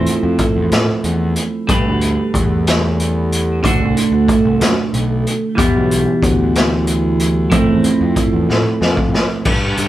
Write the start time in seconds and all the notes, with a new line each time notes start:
Already playing: F3 A3 C4 E4 C5
0.06 closed hi-hat
0.23 F2
0.38 kick, closed hi-hat
0.56 E2
0.71 A2, snare, closed hi-hat
1.04 E2, closed hi-hat
1.36 closed hi-hat
1.67 G2 G3 A3 D4 G4 B4, kick, closed hi-hat
1.86 D2
2.01 closed hi-hat
2.34 E2, kick, closed hi-hat
2.67 snare, closed hi-hat
3.00 closed hi-hat
3.32 closed hi-hat
3.63 D2 D3 A3 D4, kick, closed hi-hat
3.67 F#4
3.80 C2
3.97 closed hi-hat
4.12 D2
4.28 kick, closed hi-hat
4.44 C2
4.60 F#2, snare, closed hi-hat
4.93 B1, closed hi-hat
5.27 closed hi-hat
5.55 E2 E3 G3 B3 E4, kick, closed hi-hat
5.75 B1
5.91 closed hi-hat
6.22 D2, kick, closed hi-hat
6.55 snare, closed hi-hat
6.87 closed hi-hat
7.20 closed hi-hat
7.50 F2 F3 A3 C4, kick, closed hi-hat
7.54 E4
7.68 E2
7.84 closed hi-hat
8.01 F2
8.16 kick, closed hi-hat
8.33 E2
8.49 A2, snare
8.81 F2, snare
8.97 kick
9.14 snare
9.45 G2, kick, crash
9.77 G2 D3, closed hi-hat